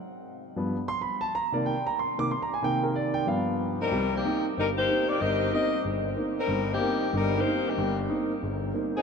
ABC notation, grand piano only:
X:1
M:4/4
L:1/8
Q:"Swing" 1/4=186
K:Cm
V:1 name="Grand piano"
z4 z c' =b =a | b d g b c' d' (3c' b a | g B d g f3 z | z8 |
z8 | z8 | z8 |]
V:2 name="Grand piano"
z3 [G,,F,=B,] z4 | z [C,E,B,] z3 [C,E,B,] z2 | [C,E,B,]4 [G,,F,=B,]4 | C,,2 [B,CE] z G,,,2 [B,CE] z |
G,,,2 [B,CE] z G,,,2 [B,CE] z | [G,,,G,,]2 [B,CE] z [G,,,G,,]2 [B,CE] z | [G,,,G,,]2 [B,CE] z G,,,2 [B,CE] z |]